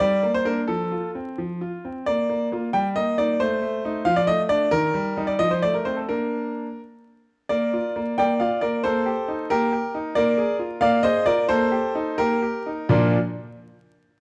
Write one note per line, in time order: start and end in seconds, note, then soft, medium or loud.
0.00 0.22 G3 medium
0.00 0.30 D5 loud
0.23 0.44 A#3 medium
0.34 0.46 C5 loud
0.45 0.62 A#3 medium
0.45 0.62 D4 medium
0.45 0.59 A#4 loud
0.67 0.91 F3 medium
0.67 1.09 A4 medium
0.92 1.16 F4 medium
1.15 1.39 C4 medium
1.38 1.60 F3 medium
1.61 1.85 F4 medium
1.85 2.07 C4 medium
2.06 2.28 A#3 medium
2.06 2.47 D5 loud
2.29 2.51 A#3 medium
2.52 2.68 A#3 medium
2.52 2.68 F4 medium
2.73 2.95 G3 medium
2.73 2.87 G5 loud
2.96 3.17 A#3 medium
2.96 3.16 D#5 loud
3.18 3.34 A#3 medium
3.18 3.35 D#4 medium
3.18 3.38 D5 loud
3.40 3.61 A3 medium
3.40 4.06 C5 loud
3.62 3.83 A3 medium
3.85 4.00 A3 medium
3.85 4.01 D#4 medium
4.05 4.27 F3 medium
4.05 4.17 F5 loud
4.16 4.28 D5 loud
4.27 4.48 A3 medium
4.27 4.41 D#5 loud
4.49 4.66 A3 medium
4.49 4.66 D4 medium
4.49 4.69 D5 loud
4.71 4.94 D#3 medium
4.71 5.24 A#4 loud
4.94 5.16 G3 medium
5.17 5.33 G3 medium
5.17 5.34 D#4 medium
5.27 5.39 D5 loud
5.39 5.62 F3 medium
5.39 5.51 D#5 loud
5.51 5.62 C5 medium
5.62 5.84 A3 medium
5.62 5.74 D5 loud
5.74 5.86 A#4 medium
5.85 6.03 A3 medium
5.85 6.03 C4 medium
5.85 5.97 C5 medium
5.97 6.09 A4 medium
6.09 6.66 A#3 medium
6.09 6.66 D4 soft
6.09 6.79 A#4 medium
7.49 7.72 A#3 medium
7.49 8.14 A#4 medium
7.49 8.18 D5 loud
7.73 7.97 F4 medium
7.96 8.17 A#3 medium
8.18 8.40 A#3 medium
8.18 8.39 D5 loud
8.18 8.31 G5 loud
8.40 8.64 F4 medium
8.40 8.60 D5 medium
8.40 8.60 F5 medium
8.61 8.83 A#3 medium
8.61 8.83 A#4 medium
8.61 8.82 D5 loud
8.84 9.06 A#3 medium
8.84 9.46 A4 medium
8.84 9.46 C5 loud
9.06 9.29 G4 medium
9.28 9.51 D#4 medium
9.50 9.72 A#3 medium
9.50 9.71 G4 medium
9.50 10.12 A#4 loud
9.72 9.95 G4 medium
9.95 10.16 D#4 medium
10.15 10.37 A#3 medium
10.15 10.78 A#4 medium
10.15 10.55 D5 loud
10.38 10.61 G#4 medium
10.59 10.83 F4 medium
10.81 11.03 A#3 medium
10.81 11.03 D5 loud
10.81 11.01 F5 loud
11.03 11.27 G#4 medium
11.03 11.25 C5 loud
11.03 11.23 D#5 loud
11.26 11.49 F4 medium
11.26 11.47 A#4 loud
11.26 11.46 D5 loud
11.48 11.71 A#3 medium
11.48 12.14 A4 loud
11.48 12.18 C5 loud
11.72 11.96 G4 medium
11.95 12.20 D#4 medium
12.18 12.42 A#3 medium
12.18 12.41 G4 medium
12.18 12.86 A#4 loud
12.42 12.68 G4 medium
12.66 12.90 D#4 medium
12.89 13.16 A#2 loud
12.89 13.16 F3 medium
12.89 13.16 D4 medium
12.89 13.16 F4 medium
12.89 13.17 A#4 medium
12.89 13.16 D5 medium